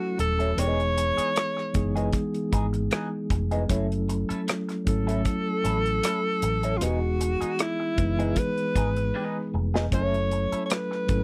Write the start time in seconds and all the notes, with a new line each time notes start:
Already playing: F#3 A3 C#4 E4 F#4 A4
0.18 D#1 A4, muted clean electric guitar stroke, closed hi-hat
0.39 F#3 C#4 E4 A4, closed hi-hat
0.57 E1 E3 G#3 B3 D#4 G#4 C#5, closed hi-hat
0.80 closed hi-hat
0.97 muted clean electric guitar stroke, closed hi-hat
1.17 E3 B3 D#4 G#4, muted fingered electric bass stroke, closed hi-hat
1.36 muted clean electric guitar stroke, cross-stick, closed hi-hat
1.57 muted clean electric guitar stroke, cross-stick
1.73 F#1 E3 G#3 B3 D#4 G#4, kick, closed hi-hat
1.94 E3 G#3 B3 D#4 G#4, closed hi-hat
2.13 kick, closed hi-hat
2.34 closed hi-hat
2.52 G#1 E3 B3 D#4 G#4, kick, closed hi-hat
2.73 muted clean electric guitar stroke, closed hi-hat
2.91 E3 B3 D#4 G#4, cross-stick, closed hi-hat
3.30 F1, muted clean electric guitar stroke, kick, closed hi-hat
3.51 E3 B3 D#4 G#4, closed hi-hat
3.68 F#1 F#3 A3 C#4 E4 A4, kick, closed hi-hat
3.92 closed hi-hat
4.09 muted clean electric guitar stroke, closed hi-hat
4.29 A3 C#4 E4 A4, muted fingered electric bass stroke, closed hi-hat
4.47 muted clean electric guitar stroke, cross-stick, closed hi-hat
4.69 muted clean electric guitar stroke, cross-stick, closed hi-hat
4.85 G#1 F#3 A3 C#4 E4 A4, kick, closed hi-hat
5.06 F#3 A3 C#4 E4 A4, closed hi-hat
5.25 muted clean electric guitar stroke, kick, closed hi-hat
5.64 A1 A3 C#4 E4 A4, closed hi-hat
5.85 muted clean electric guitar stroke, closed hi-hat
6.03 A3 C#4 E4 A4, cross-stick, closed hi-hat
6.42 A1, muted clean electric guitar stroke, closed hi-hat
6.63 A3 C#4 E4 A4, closed hi-hat
6.77 E3 G#3 F4
6.81 E1 G#3 B3 D#4 F#4 G4 G#4, closed hi-hat
6.89 G#4
7.20 muted clean electric guitar stroke, closed hi-hat
7.41 G#3 B3 D#4 G#4, muted fingered electric bass stroke, closed hi-hat
7.59 E4, muted clean electric guitar stroke, cross-stick, closed hi-hat
7.80 muted clean electric guitar stroke
7.96 F#1 E3 G#3 B3 D#4 B4, kick, closed hi-hat
8.17 E3 G#3 B3 D#4 G#4, closed hi-hat
8.21 G#3
8.36 B4, muted clean electric guitar stroke, kick, closed hi-hat
8.58 closed hi-hat
8.75 G#1 G#3 B3 D#4 G#4, kick, closed hi-hat
8.96 muted clean electric guitar stroke, closed hi-hat
9.14 G#3 B3 D#4 G#4
9.54 F1, muted clean electric guitar stroke
9.74 G#3 B3 D#4 G#4, snare
9.91 F#1 F#3 A3 C#4 E4 G#4 A4 C#5, kick, closed hi-hat
10.01 A4
10.14 closed hi-hat
10.31 muted clean electric guitar stroke, closed hi-hat
10.52 A3 C#4 E4 A4, muted fingered electric bass stroke, closed hi-hat
10.66 C#5
10.70 B4, muted clean electric guitar stroke, cross-stick, closed hi-hat
10.91 muted clean electric guitar stroke, cross-stick
11.07 G#1 F#3 A3 C#4 E4 A4, kick, closed hi-hat